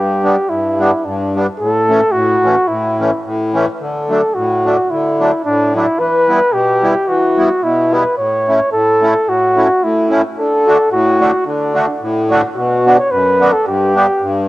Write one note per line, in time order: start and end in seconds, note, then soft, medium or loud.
0.00 0.37 G2 medium
0.00 0.51 G4 medium
0.24 0.36 G3 medium
0.24 0.36 B3 medium
0.24 0.36 D4 medium
0.49 0.92 G2 soft
0.49 1.06 E4 medium
0.79 0.91 G3 medium
0.79 0.91 B3 soft
0.79 0.91 D4 medium
1.05 1.47 G2 medium
1.05 1.34 D4 medium
1.35 1.46 G3 soft
1.35 1.47 B3 soft
1.35 1.47 D4 medium
1.59 2.02 A2 medium
1.59 2.13 A4 medium
1.88 2.00 E3 medium
1.88 2.01 A3 medium
1.88 2.01 C#4 medium
2.12 2.56 A2 medium
2.12 2.69 F#4 medium
2.45 2.56 E3 medium
2.45 2.56 A3 soft
2.45 2.56 C#4 soft
2.68 3.11 A2 soft
2.68 3.24 E4 medium
3.00 3.11 E3 medium
3.00 3.11 A3 soft
3.00 3.11 C#4 medium
3.25 3.67 A2 medium
3.54 3.66 E3 medium
3.54 3.66 A3 medium
3.54 3.66 C#4 medium
3.81 4.22 D3 soft
3.81 4.36 A4 medium
4.09 4.21 F#3 soft
4.09 4.21 A3 soft
4.09 4.22 D4 medium
4.35 4.78 A2 medium
4.35 4.92 F#4 medium
4.65 4.77 F#3 medium
4.65 4.77 A3 soft
4.65 4.77 D4 medium
4.91 5.32 D3 medium
4.91 5.45 E4 medium
5.19 5.31 F#3 medium
5.19 5.32 A3 soft
5.19 5.31 D4 medium
5.45 5.87 A2 medium
5.45 5.72 D4 medium
5.75 5.86 F#3 medium
5.75 5.86 A3 soft
5.75 5.86 D4 medium
5.75 6.01 E4 medium
5.99 6.40 E3 soft
5.99 6.55 B4 medium
6.29 6.40 G3 medium
6.29 6.40 B3 soft
6.29 6.40 E4 medium
6.53 6.94 B2 medium
6.53 7.09 G4 medium
6.83 6.94 G3 medium
6.83 6.94 B3 soft
6.83 6.94 E4 medium
7.08 7.49 E3 soft
7.08 7.65 F#4 medium
7.37 7.49 G3 soft
7.37 7.49 B3 soft
7.37 7.49 E4 medium
7.62 8.04 B2 medium
7.62 7.95 E4 medium
7.91 8.03 G3 soft
7.91 8.04 B3 soft
7.91 8.04 E4 medium
7.91 8.17 B4 medium
8.17 8.60 A2 medium
8.17 8.69 C#5 medium
8.48 8.60 A3 soft
8.48 8.60 C#4 soft
8.48 8.60 E4 soft
8.72 9.14 A2 medium
8.72 9.30 A4 medium
9.02 9.13 A3 medium
9.02 9.14 C#4 soft
9.02 9.14 E4 medium
9.27 9.68 A2 soft
9.27 9.85 F#4 medium
9.56 9.68 A3 soft
9.56 9.68 C#4 soft
9.56 9.68 E4 medium
9.83 10.23 A2 medium
9.83 10.11 E4 medium
10.10 10.22 A3 medium
10.10 10.22 C#4 soft
10.10 10.22 E4 medium
10.37 10.78 D3 medium
10.37 10.88 A4 medium
10.66 10.77 A3 medium
10.66 10.77 D4 medium
10.66 10.78 F#4 medium
10.91 11.32 A2 medium
10.91 11.42 F#4 medium
11.20 11.31 A3 medium
11.20 11.31 D4 soft
11.20 11.31 F#4 medium
11.46 11.87 D3 medium
11.46 11.97 D4 medium
11.74 11.86 A3 soft
11.74 11.86 D4 soft
11.74 11.86 F#4 medium
12.02 12.43 A2 medium
12.30 12.41 A3 medium
12.30 12.42 D4 soft
12.30 12.42 F#4 medium
12.56 12.98 B2 medium
12.56 13.00 F#4 medium
12.86 12.97 B3 medium
12.86 12.97 D4 soft
12.86 12.97 F#4 medium
12.99 13.13 C#5 medium
13.11 13.52 F#2 medium
13.11 13.54 B4 medium
13.40 13.52 B3 medium
13.40 13.52 D4 soft
13.40 13.52 F#4 medium
13.53 13.65 A4 medium
13.67 14.07 G2 medium
13.67 14.45 G4 medium
13.95 14.06 B3 medium
13.95 14.06 D4 medium
13.95 14.07 G4 medium
14.21 14.48 G2 medium